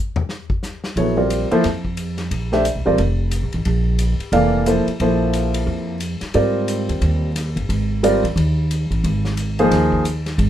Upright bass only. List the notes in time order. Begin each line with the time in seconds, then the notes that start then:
0.96 A#1
1.51 muted upright bass stroke
1.65 F2
2.31 A#1
2.75 C2
2.87 A1
2.98 F1
3.43 A#1
3.54 A1
3.66 A#1
4.19 muted upright bass stroke
4.32 F1
4.87 muted upright bass stroke
5.00 A#1
5.67 F2
6.22 muted upright bass stroke
6.35 G#2
6.89 D#2
7.01 D#2
7.56 G1
7.69 G#1
8.24 A1
8.36 D#2
8.91 A1
9.04 G#1
9.71 D#2
10.38 G#1